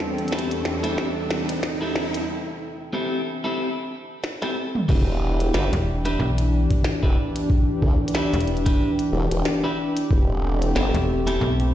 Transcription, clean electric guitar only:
0.32 0.50 C4 medium
0.32 0.50 E4 medium
0.32 0.50 G4 medium
0.32 0.50 A4 medium
0.83 1.07 C4 medium
0.83 1.07 E4 medium
0.83 1.07 G4 medium
0.83 1.07 A4 loud
1.81 1.94 C4 medium
1.81 1.94 E4 medium
1.81 1.95 G4 medium
1.81 1.95 A4 medium
2.93 3.19 C4 medium
2.93 3.19 E4 medium
2.93 3.19 G4 medium
2.93 3.19 A4 medium
3.44 3.68 C4 medium
3.44 3.68 E4 medium
3.44 3.68 G4 medium
3.44 3.68 A4 medium
4.42 4.55 C4 medium
4.42 4.55 E4 medium
4.42 4.55 G4 medium
4.42 4.55 A4 medium
4.89 5.49 D4 loud
4.89 5.49 E4 medium
4.89 5.49 G4 medium
4.89 5.49 B4 loud
5.54 5.72 D4 medium
5.54 5.72 E4 medium
5.54 5.72 G4 medium
5.54 5.72 B4 medium
6.05 6.29 D4 medium
6.05 6.29 E4 medium
6.05 6.29 G4 medium
6.05 6.29 B4 loud
7.03 7.16 D4 medium
7.03 7.16 E4 medium
7.03 7.16 G4 medium
7.03 7.16 B4 medium
8.14 8.40 D4 medium
8.14 8.40 E4 medium
8.14 8.40 G4 medium
8.14 8.40 B4 medium
8.66 8.89 D4 medium
8.66 8.89 E4 medium
8.66 8.89 G4 medium
8.66 8.89 B4 medium
9.64 9.77 D4 medium
9.64 9.77 E4 medium
9.64 9.77 G4 medium
9.64 9.77 B4 medium
10.75 10.93 C4 medium
10.75 10.93 E4 medium
10.75 10.93 G4 medium
10.75 10.93 A4 medium
11.27 11.50 C4 medium
11.27 11.50 E4 medium
11.27 11.50 G4 medium
11.27 11.50 A4 loud

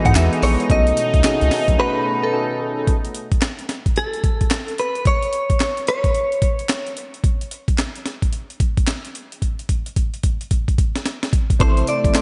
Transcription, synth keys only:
0.00 0.15 B3 medium
0.00 0.15 D#4 medium
0.00 0.16 F#4 medium
0.00 0.16 G#4 medium
0.00 0.70 A4 medium
0.00 0.16 B4 loud
0.15 0.66 B3 medium
0.15 0.66 D#4 medium
0.15 0.67 F#4 medium
0.15 0.67 G#4 medium
0.69 1.20 C#4 medium
0.69 1.21 D#4 medium
0.69 1.21 F#4 medium
0.69 1.21 A4 medium
1.24 1.75 C#4 medium
1.24 1.75 D#4 medium
1.24 1.75 F#4 medium
1.24 1.76 G#4 loud
1.78 2.30 C#4 medium
1.78 2.30 D#4 medium
1.78 2.30 F#4 medium
1.78 2.30 B4 loud
2.32 2.84 C#4 medium
2.32 2.84 D#4 medium
2.32 2.84 F#4 medium
2.32 2.85 A4 medium
11.59 12.11 C4 medium
11.59 12.11 E4 medium
11.59 12.12 A4 medium
11.59 12.12 C5 medium
12.14 12.22 C4 medium
12.14 12.22 E4 medium
12.14 12.22 A4 medium
12.14 12.22 C5 medium

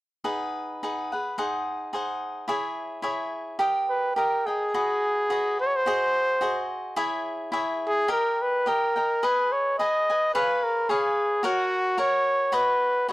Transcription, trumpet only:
3.90 4.15 B4 medium
4.16 4.47 A#4 medium
4.46 5.60 G#4 medium
5.60 5.68 C5 medium
5.67 5.77 C#5 medium
5.76 6.73 C5 medium
7.87 8.10 G#4 medium
8.12 8.44 A#4 medium
8.42 8.70 B4 medium
8.68 9.26 A#4 medium
9.25 9.54 B4 medium
9.52 9.78 C#5 medium
9.79 10.31 D#5 medium
10.34 10.65 B4 medium
10.63 10.91 A#4 medium
10.90 11.45 G#4 medium
11.46 11.96 F#4 medium
12.00 12.56 C#5 medium
12.54 13.10 B4 medium

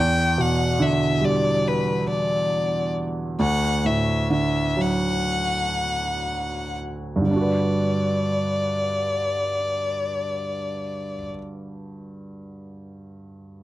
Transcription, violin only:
0.00 0.42 G5 medium
0.40 0.84 F#5 medium
0.82 1.27 E5 medium
1.25 1.69 D5 medium
1.68 2.09 B4 medium
2.10 2.91 D5 medium
3.41 3.87 F#5 medium
3.86 4.31 E5 medium
4.34 4.82 E5 medium
4.81 6.78 F#5 medium
7.31 11.28 D5 medium

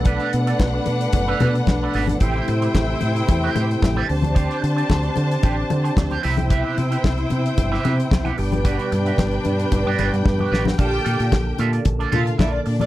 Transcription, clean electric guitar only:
0.05 0.30 D4 medium
0.05 0.31 A4 medium
0.05 0.31 B4 medium
0.33 muted clean electric guitar stroke soft
0.46 0.58 D4 medium
0.46 0.58 A4 medium
0.46 0.60 D5 medium
0.59 muted clean electric guitar stroke soft
0.74 muted clean electric guitar stroke soft
1.13 muted clean electric guitar stroke soft
1.27 1.39 D4 medium
1.27 1.40 A4 medium
1.27 1.40 B4 medium
1.40 1.57 D4 medium
1.40 1.54 A4 medium
1.40 1.53 B4 medium
1.55 muted clean electric guitar stroke soft
1.68 muted clean electric guitar stroke soft
1.82 1.93 D4 soft
1.82 1.94 A4 soft
1.82 1.95 B4 medium
1.94 2.15 D4 medium
1.94 2.08 A4 medium
1.94 2.07 B4 medium
2.09 muted clean electric guitar stroke soft
2.21 2.46 E4 medium
2.21 2.46 G4 medium
2.21 2.46 C5 medium
2.49 muted clean electric guitar stroke soft
2.62 2.73 E4 soft
2.62 2.74 G4 medium
2.62 2.75 C5 medium
2.89 muted clean electric guitar stroke soft
3.16 muted clean electric guitar stroke soft
3.28 muted clean electric guitar stroke soft
3.42 3.54 E4 medium
3.42 3.54 G4 medium
3.42 3.55 C5 medium
3.55 3.72 E4 medium
3.55 3.69 G4 medium
3.55 3.68 C5 medium
3.69 muted clean electric guitar stroke soft
3.82 muted clean electric guitar stroke soft
3.96 4.08 E4 medium
3.96 4.08 G4 medium
3.96 4.09 D5 medium
4.08 muted clean electric guitar stroke soft
4.22 muted clean electric guitar stroke soft
4.34 4.60 D4 medium
4.34 4.60 G4 medium
4.34 4.60 C5 medium
4.61 muted clean electric guitar stroke soft
4.76 4.88 D4 medium
4.76 4.88 G4 medium
4.76 4.89 D5 medium
4.89 muted clean electric guitar stroke soft
5.03 muted clean electric guitar stroke soft
5.30 muted clean electric guitar stroke soft
5.43 5.64 D4 medium
5.43 5.56 G4 medium
5.43 5.56 C5 medium
5.57 muted clean electric guitar stroke soft
5.70 muted clean electric guitar stroke soft
5.83 5.95 D4 soft
5.83 5.96 G4 medium
5.83 5.96 C5 medium
5.97 muted clean electric guitar stroke soft
6.10 6.27 D4 medium
6.10 6.22 G4 medium
6.10 6.23 C5 medium
6.23 6.44 G4 medium
6.23 6.37 B4 medium
6.23 6.36 E5 medium
6.38 muted clean electric guitar stroke soft
6.50 6.75 G4 medium
6.50 6.75 B4 medium
6.50 6.76 E5 medium
6.77 muted clean electric guitar stroke soft
6.91 7.02 G4 medium
6.91 7.03 B4 medium
6.91 7.03 E5 medium
7.03 muted clean electric guitar stroke soft
7.18 muted clean electric guitar stroke soft
7.44 muted clean electric guitar stroke soft
7.57 muted clean electric guitar stroke soft
7.71 7.82 G4 medium
7.71 7.83 B4 medium
7.71 7.83 E5 medium
7.83 8.00 G4 medium
7.83 7.98 B4 medium
7.83 7.97 E5 medium
7.98 muted clean electric guitar stroke soft
8.10 muted clean electric guitar stroke soft
8.24 8.37 G4 medium
8.24 8.37 B4 medium
8.24 8.38 F#5 medium
8.38 muted clean electric guitar stroke soft
8.52 muted clean electric guitar stroke soft
8.64 8.89 F#4 medium
8.64 8.90 B4 medium
8.64 8.90 D5 medium
8.91 muted clean electric guitar stroke soft
9.06 9.17 F#4 medium
9.06 9.18 B4 medium
9.06 9.19 E5 medium
9.33 muted clean electric guitar stroke soft
9.60 muted clean electric guitar stroke soft
9.72 muted clean electric guitar stroke soft
9.86 9.97 F#4 medium
9.86 9.98 B4 medium
9.86 9.98 D5 medium
9.98 10.15 F#4 medium
9.98 10.12 B4 medium
9.98 10.11 D5 medium
10.12 muted clean electric guitar stroke soft
10.25 muted clean electric guitar stroke soft
10.39 10.50 F#4 soft
10.39 10.51 B4 soft
10.39 10.52 D5 medium
10.51 10.73 F#4 medium
10.51 10.66 B4 medium
10.51 10.64 D5 medium
10.66 muted clean electric guitar stroke soft
10.78 10.99 F4 medium
10.78 11.00 A4 medium
10.78 11.00 D5 medium
11.04 11.19 F4 medium
11.04 11.19 A4 medium
11.04 11.18 D5 medium
11.19 11.30 F4 soft
11.19 11.31 A4 medium
11.19 11.31 D5 medium
11.46 muted clean electric guitar stroke soft
11.58 11.73 F4 medium
11.58 11.72 A4 medium
11.58 11.72 E5 medium
11.73 11.84 F4 soft
11.73 11.85 A4 soft
11.73 11.85 D5 medium
11.99 12.10 F4 medium
11.99 12.11 A4 medium
11.99 12.12 D5 medium
12.12 12.29 F4 medium
12.12 12.26 A4 medium
12.12 12.26 E5 medium
12.26 muted clean electric guitar stroke soft
12.38 12.60 F4 medium
12.38 12.53 A4 medium
12.38 12.52 D5 medium
12.53 muted clean electric guitar stroke soft
12.66 muted clean electric guitar stroke soft
12.80 12.86 F4 soft
12.80 12.86 A4 medium
12.80 12.86 D5 medium

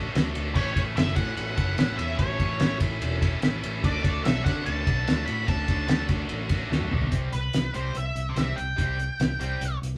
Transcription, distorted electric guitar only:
0.00 0.14 D3 medium
0.00 0.12 A3 medium
0.00 0.13 D4 medium
0.00 0.14 F#4 medium
0.00 0.15 A4 medium
0.12 0.55 A3 medium
0.12 0.36 D4 medium
0.12 0.35 F#4 medium
0.12 0.33 A4 medium
0.34 0.55 D4 medium
0.34 0.55 F#4 medium
0.34 0.56 A4 medium
0.54 0.94 A2 medium
0.54 0.94 E3 medium
0.54 0.76 A3 medium
0.54 0.76 C#4 medium
0.54 0.75 E4 medium
0.54 0.73 A4 loud
0.74 0.95 A3 medium
0.74 0.96 C#4 medium
0.74 0.96 E4 medium
0.74 0.96 A4 medium
0.94 1.77 A2 medium
0.94 1.78 E3 medium
0.94 1.58 A3 medium
0.94 1.56 C#4 medium
0.94 1.56 E4 loud
0.94 1.55 A4 medium
1.56 1.76 A3 medium
1.56 1.76 C#4 medium
1.56 1.77 E4 medium
1.56 1.78 A4 medium
1.76 2.00 A3 medium
1.76 1.99 C#4 medium
1.76 1.98 E4 medium
1.76 1.97 A4 medium
1.98 2.19 A3 medium
1.98 2.20 C#4 medium
1.98 2.20 E4 medium
1.98 2.21 A4 medium
2.19 2.58 A2 medium
2.19 2.59 E3 medium
2.19 2.43 A3 medium
2.19 2.40 C#4 loud
2.19 2.40 E4 loud
2.19 2.39 A4 loud
2.39 2.60 A3 medium
2.39 2.60 C#4 medium
2.39 2.61 E4 medium
2.39 2.63 A4 medium
2.59 3.42 A2 medium
2.59 3.42 E3 medium
2.59 3.23 A3 medium
2.59 3.22 C#4 loud
2.59 3.21 E4 loud
2.59 3.21 A4 loud
3.21 3.41 A3 medium
3.21 3.42 C#4 medium
3.21 3.43 E4 medium
3.21 3.44 A4 medium
3.42 3.66 A3 medium
3.42 3.64 C#4 medium
3.42 3.63 E4 medium
3.42 3.62 A4 medium
3.62 3.83 A3 medium
3.62 3.83 C#4 medium
3.62 3.83 E4 medium
3.62 3.85 A4 medium
3.83 4.24 D3 medium
3.83 4.24 A3 medium
3.83 4.07 D4 medium
3.83 4.05 F#4 loud
3.83 4.03 A4 loud
4.03 4.25 D4 medium
4.03 4.26 F#4 medium
4.03 4.26 A4 medium
4.24 5.06 D3 medium
4.24 5.04 A3 medium
4.24 4.87 D4 medium
4.24 4.86 F#4 loud
4.24 4.84 A4 loud
4.86 5.05 D4 medium
4.86 5.07 F#4 medium
4.86 5.07 A4 medium
5.06 5.46 A3 medium
5.06 5.28 D4 medium
5.06 5.27 F#4 medium
5.06 5.25 A4 medium
5.26 5.47 D4 medium
5.26 5.48 F#4 medium
5.26 5.48 A4 medium
5.46 5.85 D3 medium
5.46 5.86 A3 medium
5.46 5.69 D4 loud
5.46 5.67 F#4 medium
5.46 5.66 A4 medium
5.67 5.87 D4 medium
5.67 5.88 F#4 medium
5.67 5.89 A4 medium
5.87 6.70 D3 medium
5.87 6.68 A3 loud
5.87 6.51 D4 medium
5.87 6.50 F#4 loud
5.87 6.48 A4 loud
6.49 6.69 D4 medium
6.49 6.71 F#4 medium
6.49 6.71 A4 medium
6.70 7.11 A3 medium
6.70 6.92 D4 medium
6.70 6.90 F#4 medium
6.70 6.89 A4 medium
6.90 7.11 D4 medium
6.90 7.11 F#4 medium
6.90 7.10 A4 medium
7.11 7.28 C3 medium
7.11 7.29 G3 medium
7.11 7.29 C4 medium
7.74 7.91 C3 medium
7.74 7.91 G3 medium
7.74 7.91 C4 medium
8.36 8.53 C3 medium
8.36 8.53 G3 medium
8.36 8.53 C4 medium
8.77 8.94 C3 medium
8.77 8.95 G3 medium
8.77 8.95 C4 medium
9.40 9.57 C3 medium
9.40 9.57 G3 medium
9.40 9.57 C4 loud

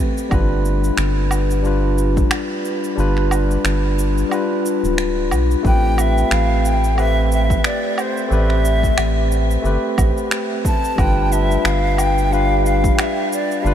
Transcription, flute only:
5.66 6.02 G5 loud
6.00 6.34 E5 medium
6.33 6.68 F5 medium
6.67 6.99 G5 loud
6.99 7.30 E5 loud
7.33 7.68 E5 loud
7.66 8.02 D5 medium
8.00 8.35 C5 medium
8.33 9.66 E5 loud
10.67 11.01 A5 loud
10.99 11.34 G5 loud
11.32 11.67 E5 medium
11.66 12.00 F5 loud
11.99 12.34 G5 loud
12.32 12.65 F5 loud
12.66 13.01 F5 medium
12.99 13.32 E5 medium
13.33 13.68 D5 medium
13.66 13.74 F5 medium

